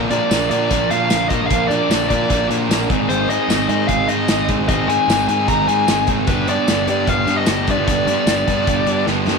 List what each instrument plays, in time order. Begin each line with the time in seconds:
Already playing: overdriven electric guitar A#2 D3 F3 A#3 D4 A#4
0.10 overdriven electric guitar A#2 D3 F3 A#3 D4 A#4, picked electric bass A#2, lead electric guitar D5, closed hi-hat
0.30 picked electric bass A#1, overdriven electric guitar A#2 D3 F3 A#3 D4 A#4, snare, closed hi-hat, tambourine
0.49 overdriven electric guitar A#2 D3 F3 A#3 D4 A#4, picked electric bass A#2, lead electric guitar D5, closed hi-hat
0.70 picked electric bass A#1, overdriven electric guitar A#2 D3 F3 A#3 D4 A#4, kick, closed hi-hat
0.90 overdriven electric guitar A#2 D3 F3 A#3 D4 A#4, picked electric bass A#2, lead electric guitar F5, closed hi-hat
1.10 picked electric bass A#1, overdriven electric guitar A#2 D3 F3 A#3 D4 A#4, snare, closed hi-hat, tambourine
1.29 overdriven electric guitar A#2 D3 F3 A#3 D4 A#4, picked electric bass A#2, lead electric guitar D#5, kick, closed hi-hat
1.41 picked electric bass A#1
1.47 picked electric bass A#1, overdriven electric guitar A#2 D3 F3, lead electric guitar F5, closed hi-hat
1.51 overdriven electric guitar A#3 D4 A#4, kick
1.68 overdriven electric guitar A#2 D3 F3 A#3 D4 A#4, picked electric bass A#2, lead electric guitar D5, closed hi-hat
1.89 picked electric bass A#1, overdriven electric guitar A#2 D3 F3 A#3 D4 A#4, snare, closed hi-hat, tambourine
2.08 overdriven electric guitar A#2 D3 F3 A#3 D4 A#4, picked electric bass A#2, lead electric guitar D5, kick, closed hi-hat
2.28 picked electric bass A#1, overdriven electric guitar A#2 D3 F3 A#3 D4 A#4, kick, closed hi-hat
2.48 overdriven electric guitar A#2 D3 F3 A#3 D4 A#4, picked electric bass A#2, closed hi-hat
2.69 picked electric bass A#1, overdriven electric guitar A#2 D3 F3 A#3 D4 A#4, snare, closed hi-hat, tambourine
2.88 picked electric bass G#1, overdriven electric guitar G#2 D#3 G#3 C4 D#4 G#4, kick, closed hi-hat
2.98 picked electric bass G#1
3.08 picked electric bass G#1, overdriven electric guitar G#2 D#3 G#3 C4 D#4 G#4, lead electric guitar C5, closed hi-hat
3.27 overdriven electric guitar G#2 D#3 G#3 C4 D#4 G#4, picked electric bass G#2, lead electric guitar D#5, closed hi-hat
3.48 picked electric bass G#1, overdriven electric guitar G#2 D#3 G#3 C4 D#4 G#4, snare, closed hi-hat, tambourine
3.68 overdriven electric guitar G#2 D#3 G#3 C4 D#4 G#4, picked electric bass G#2, lead electric guitar D#5, closed hi-hat
3.87 picked electric bass G#1, overdriven electric guitar G#2 D#3 G#3 C4 D#4 G#4, lead electric guitar F5, kick, closed hi-hat
4.08 overdriven electric guitar G#2 D#3 G#3 C4 D#4 G#4, picked electric bass G#2, lead electric guitar D#5, closed hi-hat
4.27 picked electric bass G#1, overdriven electric guitar G#2 D#3 G#3 C4 D#4 G#4, snare, closed hi-hat, tambourine
4.48 overdriven electric guitar G#2 D#3 G#3 C4 D#4 G#4, picked electric bass G#2, kick, closed hi-hat
4.59 picked electric bass G#1
4.68 picked electric bass G#1, overdriven electric guitar G#2 D#3 G#3 C4 D#4 G#4, lead electric guitar D#5, kick, closed hi-hat
4.87 overdriven electric guitar G#2 D#3 G#3 C4 D#4 G#4, picked electric bass G#2, lead electric guitar G#5, closed hi-hat
5.08 picked electric bass G#1, overdriven electric guitar G#2 D#3 G#3 C4 D#4 G#4, snare, closed hi-hat, tambourine
5.28 picked electric bass G#2, overdriven electric guitar G#2 D#3 G#3 C4 D#4 G#4, lead electric guitar G#5, closed hi-hat
5.48 picked electric bass G#1, overdriven electric guitar G#2 D#3 G#3 C4 D#4 G#4, lead electric guitar A#5, kick, closed hi-hat
5.67 overdriven electric guitar G#2 D#3 G#3 C4 D#4 G#4, picked electric bass G#2, lead electric guitar G#5, closed hi-hat
5.87 picked electric bass G#1, overdriven electric guitar G#2 D#3 G#3 C4 D#4 G#4, snare, closed hi-hat, tambourine
6.07 overdriven electric guitar G#2 D#3 G#3 C4 D#4 G#4, picked electric bass G#2, kick, closed hi-hat
6.18 picked electric bass G#1
6.27 picked electric bass G1, overdriven electric guitar G2 D3 G3 B3 D4 G4, lead electric guitar B4, kick, closed hi-hat
6.46 overdriven electric guitar G2 D3 G3 B3 D4 G4, picked electric bass G2, lead electric guitar D5, closed hi-hat
6.66 picked electric bass G1, overdriven electric guitar G2 D3 G3 B3 D4 G4, snare, closed hi-hat, tambourine
6.87 overdriven electric guitar G2 D3 G3 B3 D4 G4, picked electric bass G2, lead electric guitar D5, closed hi-hat
7.05 picked electric bass G1, overdriven electric guitar G2 D3 G3 B3 D4 G4, lead electric guitar F5, kick, closed hi-hat
7.26 overdriven electric guitar G2 D3 G3 B3 D4 G4, picked electric bass G2, closed hi-hat
7.37 lead electric guitar D#5
7.46 picked electric bass G1, overdriven electric guitar G2 D3 G3 B3 D4 G4, snare, closed hi-hat, tambourine
7.67 overdriven electric guitar G2 D3 G3 B3 D4 G4, picked electric bass G2, kick, closed hi-hat
7.71 lead electric guitar D5
7.77 picked electric bass G1
7.87 picked electric bass G1, overdriven electric guitar G2 D3 G3 B3 D4 G4, kick, closed hi-hat
8.06 overdriven electric guitar G2 D3 G3 B3 D4 G4, picked electric bass G2, closed hi-hat
8.26 picked electric bass G1, overdriven electric guitar G2 D3 G3 B3 D4 G4, snare, closed hi-hat, tambourine
8.47 overdriven electric guitar G2 D3 G3 B3 D4 G4, picked electric bass G2, kick, closed hi-hat
8.65 picked electric bass G1, overdriven electric guitar G2 D3 G3 B3 D4 G4, kick, closed hi-hat
8.85 overdriven electric guitar G2 D3 G3 B3 D4 G4, picked electric bass G2, closed hi-hat
9.05 picked electric bass G1, overdriven electric guitar G2 D3 G3 B3 D4 G4, snare
9.26 overdriven electric guitar G2 D3 G3 B3 D4 G4, picked electric bass G2, snare